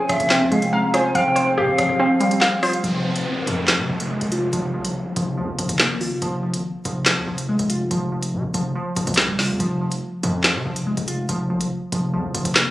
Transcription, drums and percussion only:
0.09 cross-stick, closed hi-hat
0.20 closed hi-hat
0.30 snare, clap
0.52 closed hi-hat
0.62 closed hi-hat
0.94 cross-stick, closed hi-hat
1.15 closed hi-hat
1.36 closed hi-hat
1.78 cross-stick, closed hi-hat
2.21 closed hi-hat
2.31 closed hi-hat
2.41 snare, clap
2.63 cross-stick, open hi-hat
2.73 closed hi-hat
2.84 closed hi-hat
3.16 closed hi-hat
3.47 closed hi-hat
3.68 snare, clap, closed hi-hat
4.00 closed hi-hat
4.21 closed hi-hat
4.32 closed hi-hat
4.53 closed hi-hat
4.85 closed hi-hat
5.16 closed hi-hat
5.59 closed hi-hat
5.69 closed hi-hat
5.79 snare, clap
6.01 open hi-hat
6.22 closed hi-hat
6.54 closed hi-hat
6.85 closed hi-hat
7.06 snare, clap, closed hi-hat
7.38 closed hi-hat
7.59 closed hi-hat
7.70 closed hi-hat
7.91 closed hi-hat
8.23 closed hi-hat
8.54 closed hi-hat
8.96 closed hi-hat
9.07 closed hi-hat
9.14 snare, clap, closed hi-hat
9.21 closed hi-hat
9.39 snare, open hi-hat
9.60 closed hi-hat
9.92 closed hi-hat
10.23 closed hi-hat
10.44 snare, clap, closed hi-hat
10.76 closed hi-hat
10.97 closed hi-hat
11.08 closed hi-hat
11.29 closed hi-hat
11.61 closed hi-hat
11.92 closed hi-hat
12.35 closed hi-hat
12.45 closed hi-hat
12.55 snare, clap

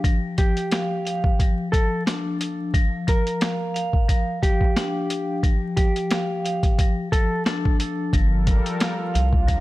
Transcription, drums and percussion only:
0.04 kick, closed hi-hat
0.38 kick, closed hi-hat
0.57 closed hi-hat
0.72 snare, closed hi-hat
1.07 closed hi-hat
1.24 kick
1.39 kick, closed hi-hat
1.73 kick, closed hi-hat
2.07 snare, closed hi-hat
2.41 closed hi-hat
2.74 kick, closed hi-hat
3.08 kick, closed hi-hat
3.27 closed hi-hat
3.41 snare, closed hi-hat
3.76 closed hi-hat
3.93 kick
4.09 kick, closed hi-hat
4.43 kick, closed hi-hat
4.61 kick
4.77 snare, closed hi-hat
5.10 closed hi-hat
5.43 kick, closed hi-hat
5.77 kick, closed hi-hat
5.96 closed hi-hat
6.11 snare, closed hi-hat
6.45 closed hi-hat
6.63 kick, closed hi-hat
6.79 kick, closed hi-hat
7.12 kick, closed hi-hat
7.46 snare, closed hi-hat
7.65 kick
7.80 closed hi-hat
8.13 kick, closed hi-hat
8.47 kick, closed hi-hat
8.66 closed hi-hat
8.80 snare, closed hi-hat
9.15 closed hi-hat
9.33 kick
9.48 kick, closed hi-hat

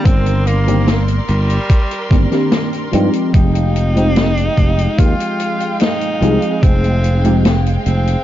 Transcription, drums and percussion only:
0.05 kick, closed hi-hat
0.26 closed hi-hat
0.47 closed hi-hat
0.68 closed hi-hat
0.87 snare, closed hi-hat
1.08 closed hi-hat
1.28 closed hi-hat
1.50 closed hi-hat
1.70 kick, closed hi-hat
1.91 closed hi-hat
2.11 kick, closed hi-hat
2.32 snare, closed hi-hat
2.52 snare, closed hi-hat
2.73 closed hi-hat
2.93 closed hi-hat
3.13 closed hi-hat
3.34 kick, closed hi-hat
3.55 closed hi-hat
3.76 closed hi-hat
3.97 closed hi-hat
4.16 snare, closed hi-hat
4.37 closed hi-hat
4.57 kick, closed hi-hat
4.79 closed hi-hat
4.98 kick, closed hi-hat
5.20 closed hi-hat
5.40 closed hi-hat
5.60 closed hi-hat
5.80 snare, closed hi-hat
6.01 closed hi-hat
6.22 closed hi-hat
6.42 closed hi-hat
6.63 kick, closed hi-hat
6.84 closed hi-hat
7.04 closed hi-hat
7.24 closed hi-hat
7.45 snare, closed hi-hat
7.66 closed hi-hat
7.86 closed hi-hat
8.07 closed hi-hat

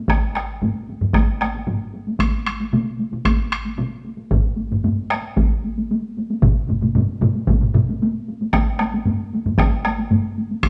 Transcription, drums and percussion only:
0.08 taiko rim, taiko, taiko high
0.36 taiko rim, taiko high
0.62 taiko low-mid, taiko high
0.89 taiko high
1.01 taiko low-mid, taiko high
1.13 taiko rim, taiko, taiko high
1.41 taiko rim, taiko high
1.55 taiko high
1.67 taiko low-mid, taiko high
1.94 taiko high
2.07 taiko high
2.19 taiko rim, taiko, taiko high
2.46 taiko rim, taiko high
2.60 taiko high
2.73 taiko mid, taiko high
2.99 taiko high
3.12 taiko mid, taiko high
3.25 taiko rim, taiko, taiko high
3.52 taiko rim
3.65 taiko high
3.78 taiko mid, taiko high
4.05 taiko high
4.17 taiko high
4.31 taiko, taiko low-mid, taiko high
4.57 taiko high
4.71 taiko low-mid, taiko high
4.84 taiko low-mid, taiko high
5.11 taiko rim, taiko high
5.37 taiko, taiko high
5.64 taiko high
5.77 taiko high
5.91 taiko high
6.17 taiko high
6.30 taiko high
6.42 taiko, taiko low-mid, taiko mid, taiko high
6.69 taiko low-mid, taiko mid, taiko high
6.82 taiko low-mid, taiko mid, taiko high
6.95 taiko low-mid, taiko mid, taiko high
7.21 taiko low-mid, taiko mid, taiko high
7.35 taiko high
7.47 taiko, taiko low-mid, taiko mid, taiko high
7.61 taiko low-mid, taiko mid
7.74 taiko low-mid, taiko mid, taiko high
7.89 taiko high
8.02 taiko high
8.28 taiko high
8.41 taiko high
8.53 taiko rim, taiko, taiko high
8.79 taiko rim, taiko high
8.94 taiko high
9.05 taiko low-mid, taiko high
9.33 taiko high
9.46 taiko low-mid, taiko high
9.58 taiko rim, taiko, taiko high
9.85 taiko rim, taiko high
9.98 taiko high
10.11 taiko low-mid, taiko high
10.38 taiko high
10.51 taiko high
10.63 taiko rim, taiko, taiko high

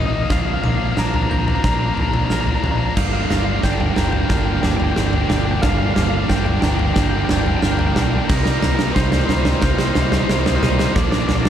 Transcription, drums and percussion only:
0.30 kick, snare, floor tom
0.64 floor tom, mid tom
0.97 snare
1.14 floor tom
1.31 floor tom
1.48 floor tom
1.64 kick, snare, floor tom, mid tom
1.97 floor tom
2.14 floor tom, mid tom
2.30 snare
2.47 floor tom
2.64 floor tom, mid tom
2.97 kick, snare, floor tom, crash
3.30 snare, floor tom
3.63 kick, snare
3.80 floor tom
3.96 snare, floor tom
4.13 floor tom
4.30 kick, snare, floor tom
4.63 snare, floor tom
4.80 floor tom
4.96 snare
5.13 floor tom
5.30 snare, floor tom, mid tom
5.63 kick, snare, floor tom
5.96 snare, floor tom
6.29 kick, snare
6.46 floor tom
6.62 snare, floor tom
6.79 floor tom
6.96 kick, snare, floor tom
7.29 snare, floor tom
7.46 floor tom
7.63 snare
7.79 floor tom
7.96 snare, floor tom, mid tom
8.30 kick, snare, floor tom, crash
8.46 snare
8.62 snare, floor tom
8.79 snare
8.96 kick, snare
9.12 snare, floor tom
9.29 snare, floor tom
9.45 snare, floor tom
9.62 kick, snare, floor tom
9.79 snare
9.95 snare, floor tom
10.12 snare, floor tom
10.29 snare
10.46 snare, floor tom
10.63 snare, floor tom, mid tom
10.79 snare
10.96 kick, snare, floor tom
11.12 snare
11.29 snare, floor tom, mid tom
11.45 snare

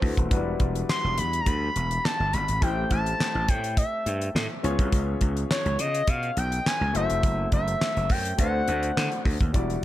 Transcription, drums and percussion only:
0.02 kick, open hi-hat
0.17 kick, closed hi-hat
0.31 kick, closed hi-hat
0.60 kick, closed hi-hat
0.75 closed hi-hat
0.89 snare, clap
1.18 closed hi-hat
1.33 closed hi-hat
1.46 kick, closed hi-hat
1.76 closed hi-hat
1.91 closed hi-hat
2.05 snare, clap
2.33 closed hi-hat
2.48 closed hi-hat
2.62 kick, closed hi-hat
2.91 kick, closed hi-hat
3.06 closed hi-hat
3.20 snare, clap
3.48 kick, closed hi-hat
3.64 closed hi-hat
3.77 kick, closed hi-hat
4.06 closed hi-hat
4.22 closed hi-hat
4.36 snare, clap
4.64 closed hi-hat
4.79 kick, closed hi-hat
4.92 kick, closed hi-hat
5.21 kick, closed hi-hat
5.37 closed hi-hat
5.51 snare, clap
5.66 closed hi-hat
5.79 closed hi-hat
5.95 closed hi-hat
6.07 kick, closed hi-hat
6.23 closed hi-hat
6.37 closed hi-hat
6.52 closed hi-hat
6.66 snare, clap
6.95 closed hi-hat
7.10 closed hi-hat
7.23 kick, closed hi-hat
7.52 kick, closed hi-hat
7.68 closed hi-hat
7.81 snare, clap
7.97 closed hi-hat
8.10 kick, open hi-hat
8.25 closed hi-hat
8.38 kick, closed hi-hat
8.68 closed hi-hat
8.83 closed hi-hat
8.97 snare, clap
9.12 closed hi-hat
9.25 kick, open hi-hat
9.41 kick, closed hi-hat
9.54 kick, closed hi-hat
9.70 closed hi-hat

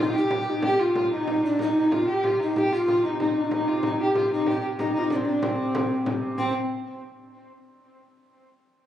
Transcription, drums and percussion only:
0.15 frame drum
0.31 frame drum
0.47 frame drum
0.62 frame drum
0.95 frame drum
1.11 frame drum
1.28 frame drum
1.59 frame drum
1.92 frame drum
2.08 frame drum
2.24 frame drum
2.40 frame drum
2.56 frame drum
2.88 frame drum
3.04 frame drum
3.20 frame drum
3.35 frame drum
3.51 frame drum
3.83 frame drum
3.99 frame drum
4.15 frame drum
4.30 frame drum
4.46 frame drum
4.79 frame drum
4.95 frame drum
5.10 frame drum
5.26 frame drum
5.42 frame drum
5.75 frame drum
5.90 frame drum
6.06 frame drum
6.38 frame drum

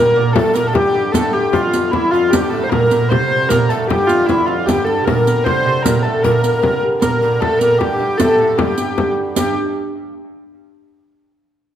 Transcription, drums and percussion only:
0.36 frame drum
0.55 riq, frame drum
0.75 frame drum
1.14 riq, frame drum
1.53 frame drum
1.73 riq, frame drum
1.93 frame drum
2.33 riq, frame drum
2.72 frame drum
2.91 riq, frame drum
3.12 frame drum
3.50 riq, frame drum
3.70 riq, frame drum
3.90 frame drum
4.09 riq
4.29 riq, frame drum
4.68 riq, frame drum
5.07 frame drum
5.27 riq, frame drum
5.46 frame drum
5.86 riq, frame drum
6.24 frame drum
6.44 riq, frame drum
6.63 frame drum
7.02 riq, frame drum
7.42 frame drum
7.61 riq, frame drum
7.81 frame drum
8.20 riq, frame drum
8.59 frame drum
8.78 riq
8.98 frame drum
9.36 riq, frame drum

